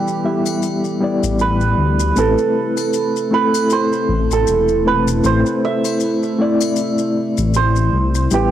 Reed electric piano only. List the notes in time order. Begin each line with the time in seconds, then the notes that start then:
Already playing: G3 B3 E4 B4 D5
0.24 G3 B3 E4 E5
1.01 G3 B3 E4 D5
2.16 A3 C4 E4 B4
3.31 A3 C4 E4 A4
4.86 A3 C4 E4 B4
5.24 A3 C4 E4 C5
6.39 A3 C4 E4 D5
8.31 G3 B3 E4 B4